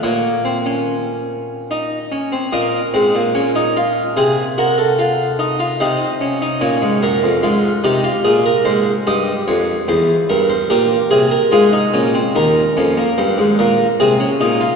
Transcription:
<<
  \new Staff \with { instrumentName = "Harpsichord" } { \time 3/4 \key bes \minor \tempo 4 = 73 << { des''2~ des''8 r8 | ees''4 des''4 c''8 bes'16 a'16~ | a'4 c''4 des''8 bes'8 | f'8 g'8 aes'16 bes'16 c''8 ees''8 des''8 |
c''8 bes'16 c''16 bes'8 aes'16 bes'16 aes'4 | bes'4 c''8 bes'8 aes'4 | } \\ { bes8 c'16 des'4~ des'16 ees'8 des'16 c'16 | bes8 c'8 des'16 ees'16 f'8 aes'8 ges'8 | f'8 ees'16 f'16 ees'8 des'16 ees'16 des'4 | r8 ees'16 f'4~ f'16 g'4~ |
g'4 g'4 f'16 ees'16 des'16 c'16 | ees'8 des'16 bes4~ bes16 c'16 des'16 ees'16 f'16 | } >> }
  \new Staff \with { instrumentName = "Harpsichord" } { \clef bass \time 3/4 \key bes \minor bes,2~ bes,8 r8 | bes,8 aes,16 bes,4~ bes,16 c4~ | c4 c4 bes,16 aes,16 ges,16 f,16 | aes,8 c8 bes,8 aes,8 g,8 f,8 |
e,8 g,8 bes,8 c8 aes,8 bes,8 | ees,8 f,8 g,16 aes,16 bes,8 c8 bes,8 | }
>>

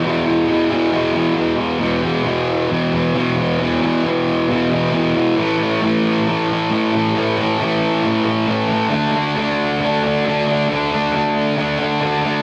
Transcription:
\new Staff \with { instrumentName = "Distorted electric guitar" } { \clef bass \time 4/4 \key a \major \tempo 4 = 135 <e, b, e>8 <b, e>8 <e, b, e>8 <e, b, e>8 <e, b, e>8 <e, b, e>8 <e, b, e>8 <b, e>8 | <e, b, e>8 <b, e>8 <e, b, e>4 <e, b, e>8 <b, e>8 <e, b, e>8 <b, e>8 | <e, b, e>8 <b, e>8 <e, b, e>4 <e, b, e>8 <b, e>8 <e, b, e>8 <b, e>8 | <a, e a>8 <e a>8 <a, e a>4 <a, e a>8 <e a>8 <a, e a>8 <e a>8 |
<a, e a>8 <e a>8 <a, e a>4 <a, e a>8 <e a>8 <a, e a>8 <e a>8 | <d a d'>8 <a d'>8 <d a d'>4 <d a d'>8 <a d'>8 <d a d'>8 <a d'>8 | <d a d'>8 <a d'>8 <d a d'>4 <d a d'>8 <a d'>8 <d a d'>8 <a d'>8 | }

